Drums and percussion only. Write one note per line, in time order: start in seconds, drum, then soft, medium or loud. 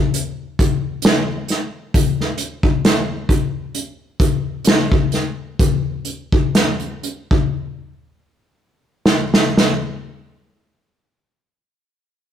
0.14 closed hi-hat medium
0.59 kick medium
0.59 closed hi-hat medium
1.02 snare loud
1.02 closed hi-hat medium
1.48 snare soft
1.48 closed hi-hat medium
1.94 kick loud
1.94 closed hi-hat medium
2.21 snare soft
2.38 closed hi-hat medium
2.63 kick medium
2.85 snare loud
2.85 closed hi-hat medium
3.29 kick medium
3.29 closed hi-hat medium
3.75 closed hi-hat medium
4.20 kick medium
4.20 closed hi-hat medium
4.65 snare loud
4.65 closed hi-hat medium
4.92 kick medium
5.12 snare soft
5.12 closed hi-hat medium
5.59 kick loud
5.59 closed hi-hat medium
6.05 closed hi-hat medium
6.32 kick medium
6.55 snare loud
6.55 closed hi-hat medium
6.80 closed hi-hat soft
7.03 closed hi-hat medium
7.31 kick medium
9.06 snare medium
9.34 snare medium
9.57 snare medium